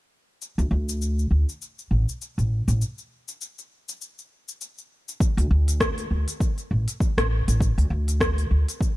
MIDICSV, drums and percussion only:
0, 0, Header, 1, 2, 480
1, 0, Start_track
1, 0, Tempo, 600000
1, 326, Time_signature, 4, 2, 24, 8
1, 7175, End_track
2, 0, Start_track
2, 0, Title_t, "Drums"
2, 334, Note_on_c, 9, 82, 46
2, 414, Note_off_c, 9, 82, 0
2, 470, Note_on_c, 9, 82, 28
2, 550, Note_off_c, 9, 82, 0
2, 711, Note_on_c, 9, 82, 61
2, 791, Note_off_c, 9, 82, 0
2, 813, Note_on_c, 9, 82, 44
2, 893, Note_off_c, 9, 82, 0
2, 951, Note_on_c, 9, 82, 31
2, 1031, Note_off_c, 9, 82, 0
2, 1193, Note_on_c, 9, 82, 53
2, 1273, Note_off_c, 9, 82, 0
2, 1294, Note_on_c, 9, 82, 50
2, 1374, Note_off_c, 9, 82, 0
2, 1430, Note_on_c, 9, 82, 30
2, 1510, Note_off_c, 9, 82, 0
2, 1670, Note_on_c, 9, 82, 59
2, 1750, Note_off_c, 9, 82, 0
2, 1773, Note_on_c, 9, 82, 50
2, 1853, Note_off_c, 9, 82, 0
2, 1909, Note_on_c, 9, 82, 30
2, 1989, Note_off_c, 9, 82, 0
2, 2147, Note_on_c, 9, 82, 59
2, 2227, Note_off_c, 9, 82, 0
2, 2252, Note_on_c, 9, 82, 50
2, 2332, Note_off_c, 9, 82, 0
2, 2387, Note_on_c, 9, 82, 32
2, 2467, Note_off_c, 9, 82, 0
2, 2625, Note_on_c, 9, 82, 68
2, 2705, Note_off_c, 9, 82, 0
2, 2729, Note_on_c, 9, 82, 51
2, 2809, Note_off_c, 9, 82, 0
2, 2869, Note_on_c, 9, 82, 32
2, 2949, Note_off_c, 9, 82, 0
2, 3109, Note_on_c, 9, 82, 60
2, 3189, Note_off_c, 9, 82, 0
2, 3211, Note_on_c, 9, 82, 53
2, 3291, Note_off_c, 9, 82, 0
2, 3349, Note_on_c, 9, 82, 28
2, 3429, Note_off_c, 9, 82, 0
2, 3587, Note_on_c, 9, 82, 67
2, 3667, Note_off_c, 9, 82, 0
2, 3689, Note_on_c, 9, 82, 52
2, 3769, Note_off_c, 9, 82, 0
2, 3827, Note_on_c, 9, 82, 29
2, 3907, Note_off_c, 9, 82, 0
2, 4068, Note_on_c, 9, 82, 67
2, 4148, Note_off_c, 9, 82, 0
2, 4163, Note_on_c, 9, 36, 107
2, 4169, Note_on_c, 9, 82, 50
2, 4243, Note_off_c, 9, 36, 0
2, 4249, Note_off_c, 9, 82, 0
2, 4305, Note_on_c, 9, 46, 41
2, 4310, Note_on_c, 9, 82, 31
2, 4385, Note_off_c, 9, 46, 0
2, 4390, Note_off_c, 9, 82, 0
2, 4544, Note_on_c, 9, 46, 53
2, 4549, Note_on_c, 9, 82, 62
2, 4624, Note_off_c, 9, 46, 0
2, 4629, Note_off_c, 9, 82, 0
2, 4643, Note_on_c, 9, 36, 90
2, 4645, Note_on_c, 9, 37, 76
2, 4650, Note_on_c, 9, 82, 50
2, 4723, Note_off_c, 9, 36, 0
2, 4725, Note_off_c, 9, 37, 0
2, 4730, Note_off_c, 9, 82, 0
2, 4783, Note_on_c, 9, 46, 43
2, 4788, Note_on_c, 9, 82, 31
2, 4863, Note_off_c, 9, 46, 0
2, 4868, Note_off_c, 9, 82, 0
2, 5022, Note_on_c, 9, 46, 54
2, 5027, Note_on_c, 9, 82, 62
2, 5102, Note_off_c, 9, 46, 0
2, 5107, Note_off_c, 9, 82, 0
2, 5123, Note_on_c, 9, 36, 94
2, 5129, Note_on_c, 9, 82, 50
2, 5203, Note_off_c, 9, 36, 0
2, 5209, Note_off_c, 9, 82, 0
2, 5262, Note_on_c, 9, 46, 27
2, 5267, Note_on_c, 9, 82, 30
2, 5342, Note_off_c, 9, 46, 0
2, 5347, Note_off_c, 9, 82, 0
2, 5502, Note_on_c, 9, 46, 55
2, 5507, Note_on_c, 9, 82, 68
2, 5582, Note_off_c, 9, 46, 0
2, 5587, Note_off_c, 9, 82, 0
2, 5603, Note_on_c, 9, 36, 95
2, 5611, Note_on_c, 9, 82, 48
2, 5683, Note_off_c, 9, 36, 0
2, 5691, Note_off_c, 9, 82, 0
2, 5744, Note_on_c, 9, 37, 75
2, 5744, Note_on_c, 9, 46, 31
2, 5749, Note_on_c, 9, 82, 30
2, 5824, Note_off_c, 9, 37, 0
2, 5824, Note_off_c, 9, 46, 0
2, 5829, Note_off_c, 9, 82, 0
2, 5985, Note_on_c, 9, 46, 56
2, 5990, Note_on_c, 9, 82, 65
2, 6065, Note_off_c, 9, 46, 0
2, 6070, Note_off_c, 9, 82, 0
2, 6084, Note_on_c, 9, 36, 104
2, 6095, Note_on_c, 9, 82, 51
2, 6164, Note_off_c, 9, 36, 0
2, 6175, Note_off_c, 9, 82, 0
2, 6227, Note_on_c, 9, 46, 42
2, 6232, Note_on_c, 9, 82, 30
2, 6307, Note_off_c, 9, 46, 0
2, 6312, Note_off_c, 9, 82, 0
2, 6464, Note_on_c, 9, 46, 55
2, 6470, Note_on_c, 9, 82, 66
2, 6544, Note_off_c, 9, 46, 0
2, 6550, Note_off_c, 9, 82, 0
2, 6564, Note_on_c, 9, 36, 96
2, 6568, Note_on_c, 9, 37, 74
2, 6574, Note_on_c, 9, 82, 49
2, 6644, Note_off_c, 9, 36, 0
2, 6648, Note_off_c, 9, 37, 0
2, 6654, Note_off_c, 9, 82, 0
2, 6705, Note_on_c, 9, 46, 43
2, 6710, Note_on_c, 9, 82, 34
2, 6785, Note_off_c, 9, 46, 0
2, 6790, Note_off_c, 9, 82, 0
2, 6948, Note_on_c, 9, 46, 54
2, 6953, Note_on_c, 9, 82, 60
2, 7028, Note_off_c, 9, 46, 0
2, 7033, Note_off_c, 9, 82, 0
2, 7044, Note_on_c, 9, 36, 92
2, 7057, Note_on_c, 9, 82, 57
2, 7124, Note_off_c, 9, 36, 0
2, 7137, Note_off_c, 9, 82, 0
2, 7175, End_track
0, 0, End_of_file